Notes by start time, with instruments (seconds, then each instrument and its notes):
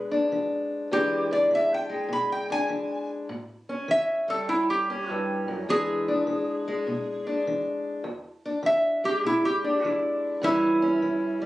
Already playing: steel-string acoustic guitar B2 G#3 D4
0.11 steel-string acoustic guitar D4
0.32 steel-string acoustic guitar E3
0.91 steel-string acoustic guitar E2 E3 G#3 D4, resonator guitar played with a steel bar G4
1.31 steel-string acoustic guitar D4, resonator guitar played with a steel bar D5
1.51 steel-string acoustic guitar E3
1.55 resonator guitar played with a steel bar E5
1.74 resonator guitar played with a steel bar G5
1.90 steel-string acoustic guitar G#3
2.09 steel-string acoustic guitar B2
2.13 resonator guitar played with a steel bar B5
2.32 resonator guitar played with a steel bar G5
2.50 steel-string acoustic guitar D4, resonator guitar played with a steel bar G#5
2.69 steel-string acoustic guitar E3
3.29 steel-string acoustic guitar A2
3.69 steel-string acoustic guitar C#4
3.88 steel-string acoustic guitar E3, resonator guitar played with a steel bar E5
4.28 steel-string acoustic guitar G3, resonator guitar played with a steel bar A4
4.49 steel-string acoustic guitar E2, resonator guitar played with a steel bar E4
4.70 resonator guitar played with a steel bar G4
4.90 steel-string acoustic guitar C#4
5.09 steel-string acoustic guitar G2, resonator guitar played with a steel bar E4
5.48 steel-string acoustic guitar F#2
5.69 steel-string acoustic guitar E2 E3 G#3 D4, resonator guitar played with a steel bar G#4
6.08 steel-string acoustic guitar D4
6.27 steel-string acoustic guitar E3
6.68 steel-string acoustic guitar G#3
6.87 steel-string acoustic guitar B2
7.27 steel-string acoustic guitar D4
7.47 steel-string acoustic guitar E3
8.04 steel-string acoustic guitar E2
8.46 steel-string acoustic guitar D4
8.63 steel-string acoustic guitar E3, resonator guitar played with a steel bar E5
9.04 steel-string acoustic guitar G#3, resonator guitar played with a steel bar G4
9.24 steel-string acoustic guitar B2, resonator guitar played with a steel bar E4
9.45 resonator guitar played with a steel bar G4
9.64 steel-string acoustic guitar D4
9.85 steel-string acoustic guitar E3, resonator guitar played with a steel bar E4
10.42 steel-string acoustic guitar A2 E3 G3 C#4, resonator guitar played with a steel bar E4
10.82 steel-string acoustic guitar C#4
11.02 steel-string acoustic guitar E3
11.42 steel-string acoustic guitar G3